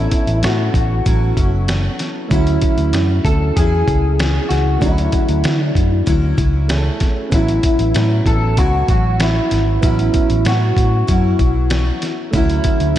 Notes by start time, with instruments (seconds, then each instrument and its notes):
Already playing: steel-string acoustic guitar A2 F#3 C#4 E4, synth keys B3 C#4 E4 A4, clean electric guitar E4
0.11 kick, closed hi-hat
0.27 fingered electric bass A1, closed hi-hat
0.43 fingered electric bass A2, clean electric guitar F#4, snare, closed hi-hat
0.74 fingered electric bass A1, kick, closed hi-hat
1.05 fingered electric bass A1, steel-string acoustic guitar A2 F#3 C#4 E4, kick, closed hi-hat
1.37 fingered electric bass F#1, steel-string acoustic guitar F#3 C#4 E4, kick, closed hi-hat
1.68 snare, closed hi-hat
1.99 snare, closed hi-hat
2.28 fingered electric bass D2, steel-string acoustic guitar D3 F#3, synth keys A3 C#4 E4, clean electric guitar E4, kick, closed hi-hat
2.32 steel-string acoustic guitar C#4 E4, synth keys F#4
2.47 closed hi-hat
2.61 kick, closed hi-hat
2.78 fingered electric bass D2, closed hi-hat
2.93 fingered electric bass F#2, snare, closed hi-hat
3.25 fingered electric bass D2, clean electric guitar A4, kick, closed hi-hat
3.56 fingered electric bass E2, steel-string acoustic guitar F#3 C#4 E4, clean electric guitar G#4, kick, closed hi-hat
3.88 fingered electric bass C#2, kick, closed hi-hat
4.19 snare, closed hi-hat
4.49 fingered electric bass C#2, clean electric guitar F#4, snare, closed hi-hat
4.79 fingered electric bass D2, steel-string acoustic guitar D3 F#3, synth keys A3 C#4 E4, clean electric guitar E4, kick, closed hi-hat
4.83 steel-string acoustic guitar C#4 E4, synth keys F#4
4.98 closed hi-hat
5.12 kick, closed hi-hat
5.29 fingered electric bass D2, closed hi-hat
5.44 fingered electric bass D3, snare, closed hi-hat
5.64 clean electric guitar D4
5.75 fingered electric bass F#2, kick, closed hi-hat
6.06 fingered electric bass D2, steel-string acoustic guitar D3 F#3 C#4 E4, kick, closed hi-hat
6.37 fingered electric bass C#2, steel-string acoustic guitar F#3 C#4 E4, kick, closed hi-hat
6.68 synth keys A3 C#4 E4 G#4, snare, closed hi-hat
6.77 synth keys A4
7.00 kick, snare, closed hi-hat
7.30 fingered electric bass A1, steel-string acoustic guitar A2 F#3 C#4 E4, synth keys B3 C#4 E4, kick, closed hi-hat
7.34 clean electric guitar E4, synth keys F#4
7.48 closed hi-hat
7.63 kick, closed hi-hat
7.79 fingered electric bass A1, closed hi-hat
7.94 steel-string acoustic guitar A2 F#3 C#4 E4, fingered electric bass A2, snare, closed hi-hat
8.26 fingered electric bass A1, clean electric guitar A4, kick, closed hi-hat
8.57 fingered electric bass C#2, steel-string acoustic guitar A2 F#3 C#4 E4, clean electric guitar F#4, kick, closed hi-hat
8.88 fingered electric bass A1, steel-string acoustic guitar F#3 C#4 E4, clean electric guitar F#4, kick, closed hi-hat
9.20 clean electric guitar E4, snare, closed hi-hat
9.51 fingered electric bass G#1, snare, closed hi-hat
9.81 fingered electric bass A1, steel-string acoustic guitar A2 F#3 C#4 E4, synth keys B3 C#4 E4, clean electric guitar E4, kick, closed hi-hat
9.86 synth keys F#4
9.99 closed hi-hat
10.14 kick, closed hi-hat
10.30 fingered electric bass A1, closed hi-hat
10.45 steel-string acoustic guitar A2 F#3 C#4 E4, fingered electric bass A2, clean electric guitar F#4, snare, closed hi-hat
10.77 fingered electric bass A2, kick, closed hi-hat
11.07 fingered electric bass F#2, steel-string acoustic guitar A2 F#3 C#4 E4, kick, closed hi-hat
11.39 fingered electric bass B1, steel-string acoustic guitar F#3 C#4 E4, kick, closed hi-hat
11.70 snare, closed hi-hat
12.02 snare, closed hi-hat
12.31 fingered electric bass D2, steel-string acoustic guitar D3 F#3 C#4, synth keys A3 C#4 E4, kick, closed hi-hat
12.35 clean electric guitar E4, steel-string acoustic guitar E4, synth keys F#4
12.50 closed hi-hat
12.64 kick, closed hi-hat
12.80 fingered electric bass D2, closed hi-hat